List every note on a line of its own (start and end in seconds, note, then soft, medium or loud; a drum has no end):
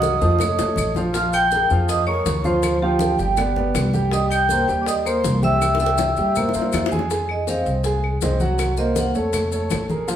0.00 0.16 C2 medium
0.00 0.15 F#3 medium
0.00 0.16 F#4 medium
0.00 0.93 D#5 loud
0.00 0.16 F#5 medium
0.00 0.92 D#6 medium
0.00 high bongo medium
0.00 high conga medium
0.00 maracas medium
0.20 0.56 F2 medium
0.20 0.37 F3 medium
0.20 0.37 F4 medium
0.20 0.37 F5 medium
0.20 high bongo medium
0.20 high conga soft
0.20 maracas soft
0.39 0.56 A3 medium
0.39 0.56 A4 medium
0.39 0.56 C#5 medium
0.39 high bongo medium
0.39 high conga soft
0.39 low conga medium
0.39 claves medium
0.39 maracas medium
0.57 0.76 B1 medium
0.57 0.90 A3 medium
0.57 0.90 A4 medium
0.57 0.90 C#5 medium
0.57 low bongo loud
0.57 high conga soft
0.57 maracas medium
0.76 1.64 A#1 medium
0.76 high conga medium
0.76 claves medium
0.76 maracas medium
0.95 1.12 F3 medium
0.95 1.12 F4 medium
0.95 1.12 F5 medium
0.95 low bongo medium
0.95 high conga medium
0.95 maracas soft
1.14 1.46 F3 medium
1.14 1.46 F4 medium
1.14 1.33 F5 medium
1.14 1.46 F5 medium
1.14 1.32 F6 medium
1.14 high bongo medium
1.14 high conga soft
1.14 maracas medium
1.33 1.68 G5 loud
1.33 1.68 G6 medium
1.33 high bongo soft
1.33 high conga soft
1.33 claves medium
1.33 maracas medium
1.51 1.67 G#3 medium
1.51 1.68 G#4 medium
1.51 1.68 A#4 medium
1.51 high bongo medium
1.51 high conga medium
1.51 maracas medium
1.70 2.23 F2 medium
1.70 2.01 F3 medium
1.70 2.01 F4 medium
1.70 2.01 F5 medium
1.70 high bongo soft
1.70 high conga soft
1.70 maracas soft
1.88 2.08 D#5 medium
1.88 2.06 D#6 medium
1.88 high bongo medium
1.88 high conga soft
1.88 maracas medium
2.07 2.38 G#3 medium
2.07 2.38 G#4 medium
2.07 2.38 A#4 medium
2.07 2.46 C#5 medium
2.07 2.42 C#6 medium
2.07 high bongo soft
2.07 high conga soft
2.07 claves medium
2.26 3.13 D2 medium
2.26 high bongo medium
2.26 low bongo medium
2.26 high conga medium
2.26 maracas medium
2.44 2.75 F3 medium
2.44 2.75 F4 medium
2.44 2.80 C5 loud
2.44 2.76 F5 medium
2.44 2.79 C6 medium
2.44 high conga medium
2.44 maracas soft
2.63 high bongo medium
2.63 high conga soft
2.63 claves medium
2.63 maracas medium
2.81 3.13 F3 medium
2.81 3.13 F4 medium
2.81 3.90 G4 medium
2.81 3.13 F5 medium
2.81 3.90 G5 medium
2.81 high bongo soft
2.81 high conga soft
2.99 high bongo medium
2.99 high conga loud
2.99 maracas medium
3.18 3.71 G1 medium
3.18 3.34 G3 medium
3.18 3.35 G4 medium
3.18 3.35 G5 medium
3.18 high conga soft
3.18 maracas soft
3.37 3.53 B3 medium
3.37 3.53 B4 medium
3.37 3.53 D5 medium
3.37 high bongo medium
3.37 high conga soft
3.37 low conga medium
3.37 claves medium
3.37 maracas medium
3.56 3.87 B3 medium
3.56 3.87 B4 medium
3.56 3.87 D5 medium
3.56 high bongo soft
3.56 high conga soft
3.56 low conga medium
3.74 4.62 C2 loud
3.74 high bongo medium
3.74 low bongo medium
3.74 high conga medium
3.74 claves medium
3.74 maracas medium
3.93 4.09 G3 medium
3.93 4.09 G4 medium
3.93 4.09 G5 medium
3.93 high bongo soft
3.93 high conga medium
3.93 maracas soft
4.11 4.43 G3 medium
4.11 4.43 G4 medium
4.11 4.32 D#5 medium
4.11 4.43 G5 medium
4.11 4.30 D#6 medium
4.11 high bongo medium
4.11 high conga soft
4.11 maracas medium
4.31 4.65 G5 medium
4.31 4.66 G6 medium
4.31 high bongo soft
4.31 high conga soft
4.31 claves medium
4.31 maracas medium
4.49 4.65 A#3 medium
4.49 4.66 A#4 medium
4.49 4.66 C5 medium
4.49 high bongo medium
4.49 high conga medium
4.49 maracas medium
4.67 5.20 D#2 medium
4.67 4.99 G3 medium
4.67 4.99 G4 medium
4.67 5.00 G5 medium
4.67 high bongo soft
4.67 high conga soft
4.67 maracas soft
4.81 4.87 D5 medium
4.81 4.86 D6 medium
4.86 4.96 D#5 loud
4.86 4.94 D#6 medium
4.86 high bongo medium
4.86 high conga soft
4.86 maracas medium
5.05 5.36 A#3 medium
5.05 5.36 A#4 medium
5.05 5.36 C5 medium
5.05 5.44 C5 medium
5.05 5.40 C6 medium
5.05 high bongo soft
5.05 high conga soft
5.05 claves medium
5.05 maracas medium
5.24 6.11 C2 loud
5.24 high bongo medium
5.24 low bongo medium
5.24 high conga medium
5.24 maracas medium
5.42 5.73 G3 medium
5.42 5.73 G4 medium
5.42 5.80 E5 medium
5.42 5.74 G5 medium
5.42 5.78 E6 medium
5.42 high conga medium
5.42 maracas soft
5.62 high bongo medium
5.62 high conga soft
5.62 claves medium
5.62 maracas medium
5.75 high bongo medium
5.80 6.11 G3 medium
5.80 6.11 G4 medium
5.80 6.88 E5 medium
5.80 6.11 G5 medium
5.80 6.88 E6 medium
5.80 maracas medium
5.86 high bongo medium
5.98 low bongo loud
5.98 high conga medium
5.98 maracas medium
6.17 6.52 G2 loud
6.17 6.33 G3 medium
6.17 6.34 G4 medium
6.17 6.34 G5 medium
6.17 high conga soft
6.17 maracas soft
6.35 6.51 A#3 medium
6.35 6.52 A#4 medium
6.35 6.52 C5 medium
6.35 high conga soft
6.35 low conga medium
6.35 claves medium
6.35 maracas medium
6.49 low bongo medium
6.54 6.72 G2 medium
6.54 6.85 A#3 medium
6.54 6.85 A#4 medium
6.54 6.85 C5 medium
6.54 high conga soft
6.54 maracas medium
6.62 low bongo medium
6.72 7.61 F2 medium
6.72 low bongo medium
6.72 high conga medium
6.72 claves medium
6.72 maracas medium
6.86 low bongo loud
6.92 7.07 G#3 medium
6.92 7.07 G#4 medium
6.92 7.07 G#5 medium
6.92 high conga medium
6.92 maracas soft
6.99 low bongo medium
7.10 7.41 G#3 medium
7.10 7.41 G#4 medium
7.10 7.41 G#5 medium
7.10 high bongo medium
7.10 maracas medium
7.29 7.48 D#5 medium
7.29 high bongo soft
7.29 high conga soft
7.29 claves medium
7.47 7.78 C4 medium
7.47 7.78 C5 medium
7.47 7.78 D#5 medium
7.47 7.67 F5 medium
7.47 high bongo medium
7.47 high conga medium
7.47 maracas medium
7.66 8.18 C2 medium
7.66 high bongo soft
7.66 high conga soft
7.66 maracas soft
7.84 8.16 G#3 medium
7.84 8.16 G#4 medium
7.84 8.16 G#5 medium
7.84 high bongo medium
7.84 high conga soft
7.84 maracas medium
8.03 high bongo soft
8.03 high conga soft
8.03 claves medium
8.21 9.10 C2 medium
8.21 8.38 C4 medium
8.21 8.38 C5 medium
8.21 8.38 D#5 medium
8.21 high bongo medium
8.21 low bongo medium
8.21 high conga medium
8.21 maracas medium
8.40 8.71 F#3 medium
8.40 8.72 F#4 medium
8.40 8.72 F#5 medium
8.40 high conga medium
8.40 maracas soft
8.59 high bongo medium
8.59 high conga soft
8.59 claves medium
8.59 maracas medium
8.77 9.09 A#3 medium
8.77 9.09 A#4 medium
8.77 9.09 C5 medium
8.77 8.96 D#5 medium
8.77 high bongo soft
8.77 high conga soft
8.77 maracas medium
8.96 9.16 F#5 medium
8.96 high bongo medium
8.96 high conga medium
8.96 maracas medium
9.15 9.67 F2 medium
9.15 9.46 A3 medium
9.15 9.46 A4 medium
9.15 9.46 C#5 medium
9.15 high conga soft
9.15 maracas soft
9.33 high bongo medium
9.33 high conga soft
9.33 low conga medium
9.33 claves medium
9.33 maracas medium
9.52 9.83 A3 medium
9.52 9.83 A4 medium
9.52 9.83 C#5 medium
9.52 high bongo soft
9.52 high conga soft
9.52 maracas medium
9.70 10.16 A#1 medium
9.70 high bongo medium
9.70 low bongo medium
9.70 high conga medium
9.70 claves medium
9.70 maracas medium
9.89 10.05 G#3 medium
9.89 10.05 G#4 medium
9.89 10.05 A#4 medium
9.89 high bongo soft
9.89 high conga medium
9.89 maracas soft
10.08 10.16 F3 medium
10.08 10.16 F4 medium
10.08 10.16 F5 medium
10.08 high bongo medium
10.08 high conga soft
10.08 maracas medium